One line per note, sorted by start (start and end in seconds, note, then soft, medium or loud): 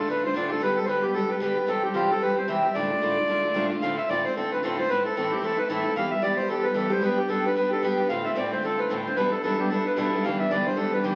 0.08 0.23 D3 medium
0.08 0.24 A3 medium
0.08 0.24 D4 medium
0.08 0.22 F4 medium
0.08 0.23 B4 medium
0.24 0.35 D3 soft
0.24 0.35 A3 soft
0.24 0.35 D4 soft
0.24 0.35 F4 soft
0.24 0.35 C5 medium
0.34 0.50 D2 medium
0.34 0.50 A2 medium
0.34 0.51 D3 medium
0.34 0.51 A3 medium
0.34 0.50 D4 medium
0.34 0.49 F4 medium
0.34 0.47 D5 medium
0.48 0.61 A3 medium
0.48 0.62 D4 soft
0.48 0.61 F4 medium
0.48 0.51 G4 medium
0.48 0.62 A4 medium
0.53 0.59 D3 soft
0.60 0.76 D3 medium
0.60 0.77 G3 medium
0.60 0.76 B3 medium
0.60 0.74 G4 medium
0.60 0.78 B4 loud
0.75 0.87 G3 soft
0.75 0.88 B3 soft
0.75 0.87 G4 soft
0.75 0.85 A4 medium
0.85 1.03 D3 medium
0.85 1.04 G3 medium
0.85 1.03 B3 medium
0.85 1.04 B4 loud
0.85 0.88 C5 medium
0.90 1.01 G4 medium
1.02 1.14 G3 soft
1.02 1.15 B3 soft
1.02 1.14 G4 medium
1.02 1.15 G4 medium
1.14 1.30 D3 medium
1.14 1.30 G3 medium
1.14 1.29 B3 medium
1.14 1.27 G4 medium
1.14 1.30 A4 medium
1.28 1.40 G3 soft
1.28 1.41 B3 soft
1.28 1.41 G4 medium
1.28 1.40 B4 medium
1.40 1.56 D3 medium
1.40 1.57 G3 medium
1.40 1.56 B3 medium
1.40 1.54 G4 medium
1.40 1.69 B4 medium
1.55 1.67 G3 soft
1.55 1.68 B3 medium
1.55 1.67 G4 soft
1.67 1.83 C3 medium
1.67 1.83 E3 medium
1.67 1.84 G3 medium
1.67 1.84 C4 medium
1.67 1.82 G4 medium
1.67 1.83 A4 medium
1.83 1.94 G3 soft
1.83 1.95 C4 soft
1.83 1.95 G4 soft
1.83 1.95 G4 medium
1.94 2.10 C3 medium
1.94 2.10 E3 medium
1.94 2.10 G3 medium
1.94 2.10 C4 medium
1.94 2.11 F4 medium
1.94 2.08 G4 medium
2.09 2.21 G3 soft
2.09 2.22 C4 soft
2.09 2.21 G4 medium
2.09 2.22 A4 medium
2.21 2.37 E3 medium
2.21 2.37 G3 medium
2.21 2.37 C4 medium
2.21 2.35 G4 medium
2.21 2.36 B4 loud
2.36 2.48 G3 soft
2.36 2.49 C4 soft
2.36 2.48 G4 soft
2.36 2.49 C5 medium
2.48 2.63 C3 medium
2.48 2.64 E3 medium
2.48 2.64 G3 medium
2.48 2.64 C4 medium
2.48 2.62 G4 medium
2.48 2.76 E5 medium
2.63 2.76 G3 soft
2.63 2.76 C4 soft
2.63 2.75 G4 medium
2.74 2.90 D2 medium
2.74 2.90 A2 medium
2.74 2.91 D3 medium
2.74 2.91 A3 medium
2.74 2.90 D4 medium
2.74 2.89 F4 medium
2.74 3.66 D5 loud
2.90 3.02 D3 soft
2.90 3.02 A3 soft
2.90 3.02 D4 soft
2.90 3.01 F4 soft
3.01 3.17 D2 medium
3.01 3.17 A2 medium
3.01 3.18 D3 medium
3.01 3.18 A3 medium
3.01 3.17 D4 medium
3.01 3.16 F4 medium
3.17 3.26 D3 soft
3.17 3.28 A3 soft
3.17 3.29 D4 medium
3.17 3.28 F4 medium
3.28 3.43 D3 medium
3.28 3.44 A3 medium
3.28 3.42 D4 medium
3.28 3.41 F4 medium
3.42 3.54 D3 soft
3.42 3.54 A3 soft
3.42 3.55 D4 soft
3.42 3.54 F4 medium
3.54 3.70 D2 medium
3.54 3.70 A2 medium
3.54 3.71 D3 medium
3.54 3.70 A3 medium
3.54 3.70 D4 medium
3.54 3.68 F4 medium
3.69 3.81 D3 soft
3.69 3.82 A3 medium
3.69 3.82 D4 soft
3.69 3.81 F4 medium
3.81 3.97 D2 medium
3.81 3.97 A2 medium
3.81 3.98 D3 medium
3.81 3.98 A3 medium
3.81 3.98 C4 medium
3.81 3.97 F4 medium
3.81 3.96 F5 loud
3.98 4.08 D3 soft
3.98 4.09 A3 soft
3.98 4.09 C4 soft
3.98 4.09 F4 soft
3.98 4.09 E5 loud
4.09 4.24 D2 medium
4.09 4.24 A2 medium
4.09 4.24 D3 medium
4.09 4.25 A3 medium
4.09 4.25 C4 medium
4.09 4.23 F4 medium
4.09 4.25 D5 loud
4.25 4.34 D3 soft
4.25 4.36 A3 soft
4.25 4.36 C4 soft
4.25 4.36 F4 medium
4.25 4.35 C5 medium
4.35 4.51 D3 medium
4.35 4.52 A3 medium
4.35 4.52 C4 medium
4.35 4.50 F4 medium
4.35 4.50 A4 medium
4.52 4.63 D3 soft
4.52 4.63 A3 soft
4.52 4.63 C4 soft
4.52 4.62 F4 medium
4.52 4.63 B4 medium
4.63 4.78 D2 medium
4.63 4.78 A2 medium
4.63 4.78 D3 medium
4.63 4.77 A3 medium
4.63 4.79 C4 medium
4.63 4.76 F4 medium
4.63 4.77 A4 medium
4.77 4.89 D3 soft
4.77 4.89 A3 medium
4.77 4.89 C4 medium
4.77 4.88 F4 medium
4.77 4.90 C5 medium
4.89 5.04 A2 medium
4.89 5.05 E3 medium
4.89 5.05 A3 medium
4.89 5.05 C4 medium
4.89 5.03 E4 medium
4.89 5.03 B4 loud
5.05 5.16 A3 soft
5.05 5.16 C4 soft
5.05 5.16 E4 soft
5.05 5.15 A4 medium
5.16 5.31 A2 medium
5.16 5.31 E3 medium
5.16 5.31 A3 medium
5.16 5.32 C4 medium
5.16 5.29 E4 medium
5.16 5.32 A4 medium
5.30 5.43 A3 medium
5.30 5.42 C4 soft
5.30 5.42 E4 medium
5.30 5.43 G4 medium
5.42 5.57 E3 medium
5.42 5.58 A3 medium
5.42 5.58 C4 medium
5.42 5.56 E4 medium
5.42 5.59 A4 medium
5.57 5.69 A3 soft
5.57 5.69 C4 soft
5.57 5.69 E4 medium
5.57 5.68 B4 loud
5.69 5.84 A2 medium
5.69 5.85 E3 medium
5.69 5.85 A3 medium
5.69 5.85 C4 medium
5.69 5.83 E4 medium
5.69 5.94 A4 medium
5.84 5.96 A3 soft
5.84 5.96 C4 soft
5.84 5.95 E4 medium
5.96 6.11 E3 medium
5.96 6.12 G3 medium
5.96 6.11 B3 medium
5.96 6.10 G4 medium
5.96 6.10 F5 loud
6.11 6.21 G3 soft
6.11 6.22 B3 soft
6.11 6.22 G4 soft
6.11 6.22 E5 medium
6.22 6.37 E3 medium
6.22 6.38 G3 medium
6.22 6.38 B3 medium
6.22 6.36 G4 medium
6.22 6.38 D5 loud
6.37 6.48 G3 soft
6.37 6.49 B3 soft
6.37 6.49 G4 medium
6.37 6.49 C5 medium
6.48 6.64 E3 medium
6.48 6.64 G3 medium
6.48 6.65 B3 medium
6.48 6.63 G4 medium
6.48 6.65 A4 medium
6.63 6.75 B3 soft
6.63 6.75 G4 soft
6.63 6.75 B4 medium
6.67 6.74 G3 soft
6.74 6.90 E3 medium
6.74 6.91 G3 medium
6.74 6.90 B3 medium
6.74 6.89 G4 medium
6.74 6.92 A4 medium
6.90 7.00 G3 soft
6.90 7.01 B3 soft
6.90 7.02 G4 medium
6.90 7.03 C5 medium
7.01 7.17 G3 medium
7.01 7.18 B3 medium
7.01 7.18 D4 medium
7.01 7.16 G4 medium
7.01 7.19 B4 medium
7.17 7.28 B3 soft
7.17 7.29 D4 soft
7.17 7.29 G4 medium
7.29 7.44 G3 medium
7.29 7.45 B3 medium
7.29 7.44 D4 medium
7.29 7.43 G4 medium
7.29 7.45 A4 medium
7.44 7.55 B3 soft
7.44 7.56 D4 soft
7.44 7.55 G4 medium
7.44 7.54 B4 medium
7.55 7.71 G3 medium
7.55 7.71 B3 medium
7.55 7.71 D4 medium
7.55 7.70 G4 medium
7.55 7.70 B4 medium
7.71 7.82 B3 soft
7.71 7.83 D4 soft
7.71 7.82 G4 medium
7.71 7.82 A4 medium
7.83 7.98 G3 medium
7.83 7.98 B3 medium
7.83 7.98 D4 medium
7.83 7.96 G4 medium
7.83 8.08 B4 medium
7.98 8.10 B3 soft
7.98 8.10 D4 soft
7.98 8.09 G4 soft
8.09 8.24 D2 medium
8.09 8.25 A2 medium
8.09 8.25 D3 medium
8.09 8.24 A3 medium
8.09 8.25 C4 medium
8.09 8.23 F4 medium
8.09 8.25 F5 loud
8.24 8.35 D3 soft
8.24 8.36 A3 soft
8.24 8.35 C4 soft
8.24 8.36 F4 soft
8.24 8.33 E5 loud
8.34 8.51 D2 medium
8.34 8.51 A2 medium
8.34 8.52 D3 medium
8.34 8.51 A3 medium
8.34 8.52 C4 medium
8.34 8.50 F4 medium
8.34 8.51 D5 medium
8.34 8.37 E5 medium
8.51 8.61 D3 soft
8.51 8.63 A3 soft
8.51 8.62 C4 soft
8.51 8.63 F4 soft
8.51 8.63 C5 medium
8.62 8.78 D3 medium
8.62 8.78 A3 medium
8.62 8.78 C4 medium
8.62 8.77 F4 medium
8.62 8.80 A4 medium
8.78 8.90 D3 soft
8.78 8.90 A3 medium
8.78 8.90 C4 soft
8.78 8.89 F4 soft
8.78 8.90 B4 medium
8.90 9.05 D2 medium
8.90 9.05 A2 medium
8.90 9.06 D3 medium
8.90 9.05 A3 medium
8.90 9.06 C4 medium
8.90 9.04 F4 medium
8.90 8.97 A4 medium
9.05 9.17 D3 soft
9.05 9.17 A3 soft
9.05 9.17 C4 soft
9.05 9.16 F4 medium
9.05 9.16 C5 medium
9.16 9.32 E2 medium
9.16 9.32 B2 medium
9.16 9.32 G3 medium
9.16 9.33 B3 medium
9.16 9.32 D4 medium
9.16 9.30 E4 medium
9.16 9.30 B4 loud
9.31 9.43 G3 soft
9.31 9.43 B3 soft
9.31 9.43 D4 soft
9.31 9.43 E4 soft
9.31 9.42 A4 medium
9.43 9.58 E2 medium
9.43 9.59 B2 medium
9.43 9.59 G3 medium
9.43 9.58 B3 medium
9.43 9.57 D4 medium
9.43 9.57 E4 medium
9.43 9.59 A4 medium
9.58 9.69 G3 soft
9.58 9.70 B3 soft
9.58 9.70 D4 medium
9.58 9.69 E4 medium
9.58 9.70 G4 medium
9.70 9.85 G3 medium
9.70 9.86 B3 medium
9.70 9.85 D4 medium
9.70 9.83 E4 medium
9.70 9.84 A4 medium
9.85 9.96 G3 soft
9.85 9.97 B3 soft
9.85 9.97 D4 soft
9.85 9.96 E4 medium
9.85 9.97 B4 medium
9.96 10.12 E2 medium
9.96 10.12 B2 medium
9.96 10.13 G3 medium
9.96 10.13 B3 medium
9.96 10.12 D4 medium
9.96 10.11 E4 medium
9.96 10.24 A4 medium
10.12 10.25 G3 soft
10.12 10.25 B3 medium
10.12 10.24 D4 soft
10.12 10.24 E4 medium
10.23 10.39 G2 medium
10.23 10.40 D3 medium
10.23 10.40 E3 medium
10.23 10.40 G3 medium
10.23 10.39 B3 medium
10.23 10.38 D4 medium
10.23 10.38 F5 medium
10.39 10.50 E3 soft
10.39 10.51 G3 soft
10.39 10.51 B3 soft
10.39 10.50 D4 soft
10.39 10.51 E5 medium
10.51 10.66 G2 medium
10.51 10.66 D3 medium
10.51 10.67 E3 medium
10.51 10.67 G3 medium
10.51 10.65 B3 medium
10.51 10.64 D4 medium
10.51 10.67 D5 loud
10.65 10.75 E3 soft
10.65 10.76 G3 soft
10.65 10.78 B3 soft
10.65 10.77 D4 medium
10.65 10.78 C5 medium
10.76 10.92 E3 medium
10.76 10.93 G3 medium
10.76 10.92 B3 medium
10.76 10.91 D4 medium
10.76 10.93 A4 medium
10.92 11.03 E3 soft
10.92 11.04 G3 soft
10.92 11.04 B3 soft
10.92 11.04 D4 soft
10.92 11.04 B4 medium
11.03 11.15 G2 medium
11.03 11.15 D3 medium
11.03 11.15 E3 medium
11.03 11.15 G3 medium
11.03 11.15 B3 medium
11.03 11.15 D4 medium
11.03 11.15 G4 medium